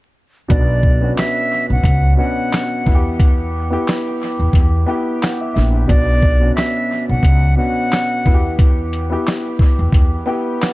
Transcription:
0.48 1.09 B1 loud
0.48 0.83 B2 medium
0.48 0.84 B3 medium
0.48 0.84 D4 medium
0.48 0.85 F#4 medium
0.48 1.13 D5 medium
0.48 kick loud
0.48 closed hi-hat medium
0.83 kick medium
1.01 1.80 B2 medium
1.01 1.80 B3 medium
1.01 1.81 C#4 medium
1.01 1.81 D4 medium
1.01 1.81 F#4 medium
1.17 1.66 E5 loud
1.17 snare loud
1.17 clap medium
1.17 closed hi-hat medium
1.70 1.83 B1 medium
1.70 2.17 F#5 medium
1.84 2.14 C#2 medium
1.84 kick loud
1.84 closed hi-hat loud
2.17 2.85 B2 medium
2.17 2.84 B3 medium
2.17 2.86 C#4 medium
2.17 2.86 D4 medium
2.17 2.87 F#4 medium
2.17 3.15 F#5 medium
2.53 snare loud
2.53 clap medium
2.53 closed hi-hat medium
2.85 3.75 E2 medium
2.85 3.53 B3 medium
2.85 3.54 E4 medium
2.85 2.94 F#4 medium
2.85 kick medium
2.95 3.58 G4 medium
3.20 kick loud
3.20 closed hi-hat medium
3.70 4.50 B3 medium
3.70 4.50 E4 medium
3.70 4.51 G4 loud
3.87 snare loud
3.87 clap medium
3.87 closed hi-hat medium
4.39 4.53 E2 medium
4.53 4.83 E2 medium
4.53 kick medium
4.53 closed hi-hat loud
4.86 5.56 B3 medium
4.86 5.57 E4 medium
4.86 5.57 G4 loud
4.86 5.19 G5 medium
5.22 5.39 F#5 medium
5.22 snare loud
5.22 clap loud
5.22 closed hi-hat medium
5.41 5.53 E5 medium
5.54 5.85 A#1 medium
5.54 5.86 E5 medium
5.54 snare soft
5.88 6.48 B1 loud
5.88 6.23 B2 medium
5.88 6.23 B3 medium
5.88 6.24 D4 medium
5.88 6.24 F#4 medium
5.88 6.52 D5 loud
5.88 kick loud
5.88 closed hi-hat medium
6.22 kick medium
6.40 7.19 B2 medium
6.40 7.20 B3 medium
6.40 7.20 C#4 medium
6.40 7.20 D4 medium
6.40 7.21 F#4 medium
6.56 7.05 E5 medium
6.56 snare loud
6.56 clap medium
6.56 closed hi-hat medium
7.09 7.22 B1 medium
7.09 7.55 F#5 medium
7.23 7.53 C#2 loud
7.23 kick medium
7.23 closed hi-hat loud
7.57 8.25 B2 medium
7.57 8.23 B3 medium
7.57 8.25 C#4 medium
7.57 8.26 D4 medium
7.57 8.26 F#4 medium
7.57 8.55 F#5 medium
7.92 snare loud
7.92 clap loud
7.92 closed hi-hat medium
8.25 9.14 E2 medium
8.25 8.92 B3 medium
8.25 8.93 E4 medium
8.25 8.33 F#4 medium
8.25 kick medium
8.34 8.97 G4 medium
8.59 kick loud
8.59 closed hi-hat medium
8.93 closed hi-hat medium
9.10 9.89 B3 medium
9.10 9.90 E4 medium
9.10 9.91 G4 medium
9.27 snare loud
9.27 clap medium
9.27 closed hi-hat medium
9.59 kick loud
9.79 9.92 E2 medium
9.93 10.23 E2 medium
9.93 kick loud
9.93 closed hi-hat loud
10.26 10.73 B3 medium
10.26 10.73 E4 medium
10.26 10.73 G4 loud
10.26 10.59 G5 medium
10.62 10.73 F#5 medium
10.62 snare loud
10.62 clap medium
10.62 closed hi-hat medium

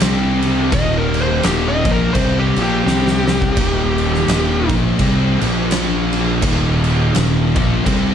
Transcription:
0.00 0.69 C2 medium
0.00 0.72 C3 medium
0.00 0.72 G3 medium
0.00 0.72 C4 loud
0.00 snare loud
0.00 crash medium
0.42 crash medium
0.72 1.40 D#1 medium
0.72 1.43 D#2 medium
0.72 1.43 A#2 loud
0.72 1.43 D#3 loud
0.72 0.96 D#5 loud
0.72 kick loud
0.72 crash medium
0.98 1.20 A#4 medium
1.14 crash medium
1.22 1.44 C5 medium
1.43 1.83 D#1 medium
1.43 1.84 D#2 loud
1.43 1.84 A#2 loud
1.43 1.85 D#3 loud
1.43 1.67 G4 loud
1.43 snare loud
1.43 crash medium
1.68 1.91 D#5 loud
1.85 2.13 A#1 medium
1.85 2.15 A#2 loud
1.85 2.15 F3 medium
1.85 2.15 A#3 loud
1.85 kick loud
1.85 crash medium
1.91 2.13 A#4 loud
2.14 2.54 C2 medium
2.14 2.56 C3 medium
2.14 2.56 G3 medium
2.14 2.56 C4 medium
2.14 2.38 C5 medium
2.14 kick loud
2.14 crash medium
2.39 2.61 G4 medium
2.56 2.85 A#1 loud
2.56 2.87 A#2 medium
2.56 2.86 F3 loud
2.56 2.86 A#3 loud
2.56 crash medium
2.62 4.73 G4 loud
2.86 3.54 C2 medium
2.86 3.57 C3 medium
2.86 3.57 G3 loud
2.86 3.57 C4 loud
2.86 snare medium
3.07 snare medium
3.28 snare medium
3.42 kick medium
3.57 4.25 D#1 medium
3.57 4.27 D#2 medium
3.57 4.27 A#2 loud
3.57 4.27 D#3 loud
3.57 kick loud
3.57 crash loud
3.98 crash medium
4.14 snare soft
4.28 4.67 D#1 loud
4.28 4.69 D#2 loud
4.28 4.69 A#2 loud
4.28 4.69 D#3 loud
4.28 snare loud
4.28 crash medium
4.69 4.98 A#1 medium
4.69 5.00 A#2 loud
4.69 4.99 F3 loud
4.69 4.99 A#3 loud
4.69 kick loud
4.69 crash medium
4.99 5.39 C2 medium
4.99 5.42 C3 medium
4.99 5.43 G3 loud
4.99 5.41 C4 loud
4.99 kick loud
4.99 crash medium
5.41 6.39 A#1 medium
5.41 6.43 A#2 medium
5.41 6.43 F3 loud
5.41 6.43 A#3 loud
5.41 crash medium
5.71 snare loud
5.71 crash medium
6.13 crash medium
6.42 7.11 D#1 medium
6.42 7.13 D#2 loud
6.42 7.14 A#2 loud
6.42 7.14 D#3 loud
6.42 kick loud
6.42 crash medium
6.84 crash medium
7.14 7.54 D#1 medium
7.14 7.55 D#2 loud
7.14 7.55 A#2 loud
7.14 7.56 D#3 loud
7.14 snare loud
7.14 crash medium
7.56 7.84 A#1 loud
7.56 7.86 A#2 loud
7.56 7.86 F3 loud
7.56 7.86 A#3 loud
7.56 kick loud
7.56 crash medium
7.86 8.14 C2 loud
7.86 8.14 C3 medium
7.86 8.14 G3 medium
7.86 8.14 C4 loud
7.86 kick loud
7.86 crash medium

